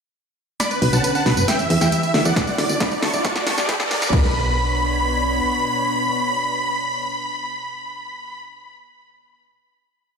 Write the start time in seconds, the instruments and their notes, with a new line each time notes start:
0.60 analog synth pad D3 B3 C#4, supersaw synth D5 B5, snare, closed hi-hat, tambourine, riser
0.71 supersaw synth B4, closed hi-hat, tambourine
0.82 fm bass B1, supersaw synth B4, open hi-hat
0.93 fm bass B1, supersaw synth F#5 A5, closed hi-hat, tambourine
1.04 supersaw synth B4, closed hi-hat, tambourine
1.15 supersaw synth F#5 A5, closed hi-hat, tambourine
1.26 fm bass B1, supersaw synth B4, snare, open hi-hat
1.37 fm bass F#1, supersaw synth B4, closed hi-hat, tambourine
1.48 analog synth pad E3 E4 G4 B4, supersaw synth E5 G5, snare, closed hi-hat, tambourine
1.59 supersaw synth E5, closed hi-hat, tambourine
1.70 fm bass E2, supersaw synth E5, open hi-hat
1.81 fm bass E2, supersaw synth E5 G5, snare, closed hi-hat, tambourine
1.92 supersaw synth E5, closed hi-hat, tambourine
2.03 supersaw synth E5, closed hi-hat, tambourine
2.14 fm bass D2, supersaw synth E5, snare, open hi-hat
2.25 fm bass E2, supersaw synth D5 F#5, closed hi-hat, tambourine
2.36 analog synth pad D3 D4 F#4, supersaw synth D5, kick, snare, closed hi-hat, tambourine
2.47 supersaw synth D5 F#5, closed hi-hat, tambourine
2.58 fm bass D2, supersaw synth D5, snare, open hi-hat
2.69 fm bass D2, supersaw synth D5, closed hi-hat, tambourine
2.80 supersaw synth D5 B5, kick, snare, closed hi-hat, tambourine
2.91 supersaw synth D5, closed hi-hat, tambourine
3.03 fm bass D2, supersaw synth A5 C#6, snare, open hi-hat
3.14 fm bass D1, supersaw synth D5, closed hi-hat, tambourine
3.24 analog synth pad B3 G4, supersaw synth A5 C#6, kick, snare, closed hi-hat, tambourine
3.36 supersaw synth D5, snare, closed hi-hat, tambourine
3.47 fm bass G1, supersaw synth A5 C#6, snare, open hi-hat
3.58 fm bass G1, supersaw synth D5, snare, closed hi-hat, tambourine
3.69 supersaw synth G5 B5, kick, snare, closed hi-hat, tambourine
3.80 supersaw synth D5, snare, closed hi-hat, tambourine
3.91 fm bass D1, supersaw synth D5, snare, open hi-hat
4.02 fm bass G1, supersaw synth D5, snare, closed hi-hat, tambourine
4.13 fm bass B1, analog synth pad B2 B3 D4 C#5, supersaw synth B5, kick, crash